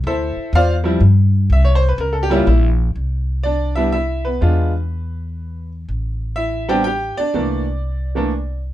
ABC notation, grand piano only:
X:1
M:3/4
L:1/16
Q:"Swing" 1/4=123
K:Cmix
V:1 name="Grand piano"
[EAce]4 [Fcdf]2 z6 | e _d c =B _B A G F E2 z2 | [K:C] z4 [Dd]2 [Ee]2 [Ee]2 [B,B]2- | [B,B]8- [B,B]2 z2 |
z4 [Ee]2 [Gg]2 [Gg]2 [Dd]2- | [Dd]8- [Dd]2 z2 |]
V:2 name="Grand piano"
z6 [F,G,CE]2 z4 | z6 [G,B,_DE]2 z4 | [K:C] z6 [G,B,D]2 z4 | [^G,B,DF]2 z8 z2 |
z6 [G,B,CD]2 z4 | [E,A,_B,D]2 z4 [E,A,B,D]2 z4 |]